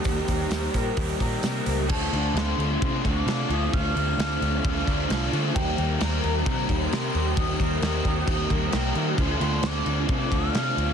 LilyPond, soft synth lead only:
\new Staff \with { instrumentName = "Soft synth lead" } { \time 4/4 \key d \phrygian \tempo 4 = 132 g'2. r4 | a''8 a''8 c'''4 c'''8 d'''4 ees'''8 | f'''8 f'''2. r8 | g''8 g''8 bes''4 bes''8 c'''4. |
ees'''8 ees'''2. r8 | c'''8 c'''8 d'''4 d'''8 f'''4. | }